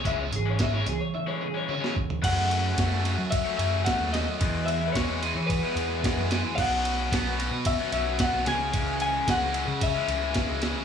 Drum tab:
CC |----------------|x---------------|----------------|x---------------|
RD |----------------|x-x-x-x-x-x-x-x-|x-x-x-x-x-x-x-x-|--x-x-x-x-x-x-x-|
HH |x-x-x-x---------|----------------|----------------|----------------|
SD |----o-o------o--|----o-------o-o-|----o-------o-o-|----o-------o-o-|
T1 |------------o---|----------------|----------------|----------------|
FT |---------------o|----------------|----------------|----------------|
BD |o---o---------o-|o---o---o---o---|o---o---o---o---|o---o---o---o---|

CC |----------------|
RD |x-x-x-x-x-x-x-x-|
HH |----------------|
SD |----o-------o-o-|
T1 |----------------|
FT |----------------|
BD |o---o---o---o---|